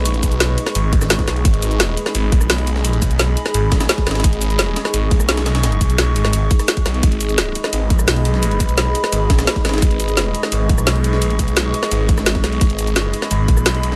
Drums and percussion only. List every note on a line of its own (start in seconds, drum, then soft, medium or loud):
0.05 closed hi-hat medium
0.05 ride medium
0.05 shaker soft
0.14 closed hi-hat soft
0.23 kick medium
0.23 closed hi-hat medium
0.23 ride medium
0.23 shaker medium
0.32 closed hi-hat soft
0.32 shaker soft
0.40 snare loud
0.40 closed hi-hat medium
0.40 ride medium
0.40 shaker medium
0.58 closed hi-hat medium
0.58 ride medium
0.58 shaker soft
0.66 cross-stick soft
0.66 snare soft
0.66 closed hi-hat soft
0.66 ride soft
0.75 closed hi-hat medium
0.75 ride medium
0.75 shaker soft
0.93 kick loud
0.93 closed hi-hat medium
0.93 ride medium
1.01 cross-stick soft
1.01 snare medium
1.01 shaker medium
1.10 snare loud
1.10 closed hi-hat medium
1.10 ride medium
1.10 shaker soft
1.19 kick medium
1.19 snare soft
1.19 closed hi-hat soft
1.28 cross-stick soft
1.28 snare soft
1.28 closed hi-hat medium
1.28 ride medium
1.28 shaker soft
1.36 ride soft
1.45 kick loud
1.45 closed hi-hat medium
1.45 ride medium
1.45 shaker soft
1.54 closed hi-hat soft
1.62 closed hi-hat medium
1.62 ride medium
1.62 shaker medium
1.71 closed hi-hat soft
1.71 shaker soft
1.80 snare loud
1.80 closed hi-hat loud
1.80 ride medium
1.80 shaker medium
1.97 closed hi-hat medium
1.97 ride medium
1.97 shaker soft
2.06 cross-stick soft
2.06 snare soft
2.06 closed hi-hat soft
2.15 closed hi-hat medium
2.15 ride medium
2.15 shaker soft
2.32 kick loud
2.32 closed hi-hat medium
2.32 ride medium
2.41 cross-stick soft
2.41 shaker medium
2.50 snare loud
2.50 closed hi-hat medium
2.50 open hi-hat medium
2.50 shaker medium
2.58 closed hi-hat soft
2.67 closed hi-hat medium
2.67 ride medium
2.67 shaker soft
2.76 snare medium
2.85 closed hi-hat medium
2.85 ride medium
2.85 shaker medium
2.93 closed hi-hat soft
3.02 kick medium
3.02 closed hi-hat medium
3.02 ride medium
3.02 shaker medium
3.11 closed hi-hat soft
3.11 shaker soft
3.19 snare loud
3.19 closed hi-hat loud
3.19 ride medium
3.19 shaker medium
3.37 closed hi-hat medium
3.37 ride medium
3.37 shaker soft
3.46 cross-stick soft
3.46 snare soft
3.46 closed hi-hat soft
3.46 ride soft
3.54 closed hi-hat medium
3.54 ride medium
3.54 shaker medium
3.72 kick loud
3.72 snare loud
3.72 closed hi-hat medium
3.72 ride medium
3.80 cross-stick soft
3.80 snare loud
3.80 ride medium
3.80 shaker medium
3.89 snare loud
3.89 closed hi-hat medium
3.89 ride medium
3.89 shaker medium
3.98 kick medium
3.98 snare soft
3.98 closed hi-hat soft
4.07 cross-stick soft
4.07 snare medium
4.07 snare soft
4.07 closed hi-hat medium
4.07 ride medium
4.07 shaker soft
4.11 snare medium
4.11 ride medium
4.15 snare medium
4.15 ride medium
4.20 snare medium
4.20 ride medium
4.24 kick loud
4.24 closed hi-hat medium
4.24 ride medium
4.24 shaker soft
4.33 closed hi-hat soft
4.42 closed hi-hat medium
4.42 ride medium
4.42 shaker medium
4.50 closed hi-hat soft
4.50 shaker soft
4.59 snare loud
4.59 closed hi-hat loud
4.59 ride medium
4.59 shaker medium
4.76 snare loud
4.76 closed hi-hat medium
4.76 ride medium
4.76 shaker soft
4.85 cross-stick soft
4.85 snare soft
4.85 closed hi-hat soft
4.94 closed hi-hat medium
4.94 ride medium
4.94 shaker medium
5.11 kick loud
5.11 closed hi-hat medium
5.11 ride medium
5.20 cross-stick soft
5.20 shaker medium
5.29 snare loud
5.29 closed hi-hat loud
5.29 ride medium
5.29 shaker medium
5.37 snare loud
5.37 closed hi-hat soft
5.37 ride medium
5.46 snare loud
5.46 closed hi-hat medium
5.46 ride medium
5.46 shaker soft
5.55 snare loud
5.55 ride medium
5.63 snare loud
5.63 closed hi-hat loud
5.63 ride medium
5.63 shaker medium
5.72 closed hi-hat soft
5.81 kick medium
5.81 closed hi-hat medium
5.81 ride medium
5.81 shaker medium
5.90 closed hi-hat soft
5.90 shaker soft
5.98 snare loud
5.98 closed hi-hat loud
5.98 ride medium
5.98 shaker medium
6.16 closed hi-hat medium
6.16 ride medium
6.16 shaker soft
6.25 cross-stick medium
6.25 snare soft
6.25 closed hi-hat soft
6.25 ride soft
6.33 closed hi-hat medium
6.33 ride medium
6.33 shaker soft
6.51 kick loud
6.51 closed hi-hat medium
6.51 ride medium
6.51 shaker soft
6.59 cross-stick soft
6.59 ride medium
6.59 shaker medium
6.68 snare loud
6.68 closed hi-hat loud
6.68 shaker medium
6.77 kick medium
6.77 closed hi-hat soft
6.77 ride medium
6.86 cross-stick soft
6.86 snare soft
6.86 closed hi-hat medium
6.86 ride medium
6.86 shaker soft
6.94 ride soft
7.03 kick loud
7.03 closed hi-hat medium
7.03 ride medium
7.03 shaker soft
7.12 closed hi-hat soft
7.21 closed hi-hat medium
7.21 ride medium
7.21 shaker medium
7.29 closed hi-hat soft
7.29 shaker soft
7.38 snare loud
7.38 closed hi-hat loud
7.38 ride medium
7.38 shaker medium
7.55 closed hi-hat medium
7.55 ride medium
7.55 shaker soft
7.64 cross-stick soft
7.64 snare medium
7.64 snare soft
7.64 closed hi-hat soft
7.73 closed hi-hat loud
7.73 ride medium
7.73 shaker soft
7.90 kick loud
7.90 closed hi-hat medium
7.90 ride medium
7.99 cross-stick soft
7.99 shaker medium
8.08 snare loud
8.08 closed hi-hat loud
8.08 open hi-hat medium
8.08 shaker medium
8.16 closed hi-hat soft
8.25 closed hi-hat medium
8.25 ride medium
8.25 shaker soft
8.34 snare medium
8.43 closed hi-hat medium
8.43 ride medium
8.43 shaker soft
8.51 closed hi-hat soft
8.60 kick medium
8.60 closed hi-hat medium
8.60 ride medium
8.60 shaker medium
8.69 closed hi-hat soft
8.69 shaker soft
8.78 snare loud
8.78 closed hi-hat loud
8.78 ride medium
8.78 shaker medium
8.95 closed hi-hat medium
8.95 ride medium
8.95 shaker soft
9.04 cross-stick medium
9.04 snare soft
9.04 closed hi-hat soft
9.04 ride soft
9.12 closed hi-hat medium
9.12 ride medium
9.12 shaker soft
9.30 kick loud
9.30 snare loud
9.30 closed hi-hat medium
9.30 ride medium
9.39 cross-stick soft
9.39 snare loud
9.39 ride medium
9.39 shaker medium
9.47 snare loud
9.47 closed hi-hat loud
9.47 ride medium
9.47 shaker soft
9.56 kick medium
9.56 snare soft
9.56 closed hi-hat soft
9.65 cross-stick soft
9.65 snare medium
9.65 snare soft
9.65 closed hi-hat medium
9.65 ride medium
9.65 shaker soft
9.69 snare medium
9.69 ride medium
9.74 snare medium
9.74 ride medium
9.78 snare medium
9.78 ride medium
9.82 kick loud
9.82 closed hi-hat medium
9.82 ride medium
9.82 shaker soft
9.91 closed hi-hat soft
10.00 closed hi-hat medium
10.00 ride medium
10.00 shaker medium
10.08 closed hi-hat soft
10.08 shaker soft
10.17 snare loud
10.17 closed hi-hat loud
10.17 ride medium
10.17 shaker medium
10.35 closed hi-hat medium
10.35 ride medium
10.35 shaker soft
10.43 cross-stick medium
10.43 snare soft
10.43 snare medium
10.43 closed hi-hat soft
10.52 closed hi-hat medium
10.52 ride medium
10.52 shaker soft
10.69 kick loud
10.69 closed hi-hat medium
10.69 ride medium
10.78 cross-stick soft
10.78 shaker medium
10.87 snare loud
10.87 closed hi-hat medium
10.87 open hi-hat medium
10.87 shaker medium
10.96 closed hi-hat soft
11.04 closed hi-hat medium
11.04 ride medium
11.04 shaker soft
11.13 snare medium
11.22 closed hi-hat medium
11.22 ride medium
11.22 shaker soft
11.30 closed hi-hat soft
11.39 kick medium
11.39 closed hi-hat medium
11.39 ride medium
11.39 shaker medium
11.48 closed hi-hat soft
11.48 shaker soft
11.57 snare loud
11.57 closed hi-hat loud
11.57 ride medium
11.57 shaker medium
11.74 closed hi-hat medium
11.74 ride medium
11.74 shaker soft
11.83 cross-stick soft
11.83 snare soft
11.83 closed hi-hat soft
11.83 ride soft
11.91 closed hi-hat medium
11.91 ride medium
11.91 shaker soft
12.09 kick loud
12.09 closed hi-hat medium
12.09 ride medium
12.18 cross-stick soft
12.18 snare medium
12.18 shaker medium
12.26 snare loud
12.26 closed hi-hat medium
12.26 ride medium
12.26 shaker medium
12.35 kick medium
12.35 snare medium
12.35 closed hi-hat soft
12.44 cross-stick soft
12.44 snare soft
12.44 closed hi-hat medium
12.44 ride medium
12.44 shaker soft
12.52 ride soft
12.61 kick loud
12.61 closed hi-hat medium
12.61 ride medium
12.61 shaker soft
12.70 closed hi-hat soft
12.79 closed hi-hat medium
12.79 ride medium
12.79 shaker medium
12.87 closed hi-hat soft
12.87 shaker soft
12.96 snare loud
12.96 closed hi-hat loud
12.96 ride medium
12.96 shaker medium
13.14 closed hi-hat medium
13.14 ride medium
13.14 shaker soft
13.22 cross-stick soft
13.22 snare soft
13.22 snare medium
13.22 closed hi-hat soft
13.31 closed hi-hat medium
13.31 ride medium
13.31 shaker soft
13.48 kick loud
13.48 closed hi-hat medium
13.48 ride medium
13.57 cross-stick soft
13.57 shaker medium
13.66 snare loud
13.66 closed hi-hat medium
13.66 open hi-hat medium
13.66 shaker medium
13.75 closed hi-hat soft
13.83 closed hi-hat medium
13.83 ride medium
13.83 shaker soft
13.92 snare medium